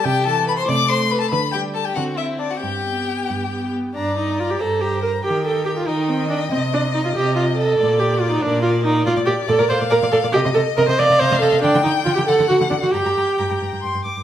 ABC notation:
X:1
M:6/8
L:1/16
Q:3/8=93
K:G
V:1 name="Violin"
g2 a2 b c' d'2 c'2 b a | b2 g2 a g f2 e2 d f | g8- g2 z2 | [K:Gm] d6 c6 |
B6 e6- | e12 | d6 B6 | d6 f6 |
e6 f6 | g6 ^f6 | g8- g z3 |]
V:2 name="Violin"
G2 A2 B c d2 c2 B A | B2 G2 A G F2 E2 D F | G8- G2 z2 | [K:Gm] b2 b2 b2 b2 b2 b2 |
g2 g2 g2 g2 g2 g2 | e2 e2 e2 e2 e2 e2 | d2 d2 d2 d2 d2 d2 | d d d z d d d d d d d d |
e e e z e e e e e e e e | g g g z g g ^f f f f f f | b b b z b b b2 c'2 d'2 |]
V:3 name="Viola"
z2 E,4 A,2 A,4 | z2 G,4 C2 C4 | z2 B,6 B,4 | [K:Gm] D2 E2 F G A2 G2 B2 |
G2 A2 G F E2 C2 D2 | C2 D2 E F G2 F2 A2- | A2 G2 F E D2 F2 E2 | F2 G2 A B c2 B2 A2 |
G2 A2 B c d2 c2 A2 | D2 E2 F G A2 ^F2 D F | G6 z6 |]
V:4 name="Cello" clef=bass
C,4- C, z C,4- C, z | D,4- D, z D,4- D, z | G,,4- G,, z G,,4- G,, z | [K:Gm] G,,4- G,, z G,,4- G,, z |
E,4- E, z E,4- E, z | C,4- C, z C,4- C, z | B,,4- B,, z B,,4- B,, z | B,, B,, B,, z B,, B,, B,, B,, B,, B,, B,, B,, |
C, C, C, z C, C, C, C, C, C, C, C, | D, D, D, z D, D, D, D, D, D, D, D, | G,, G,, G,, z G,, G,, G,, G,, G,, G,, G,, G,, |]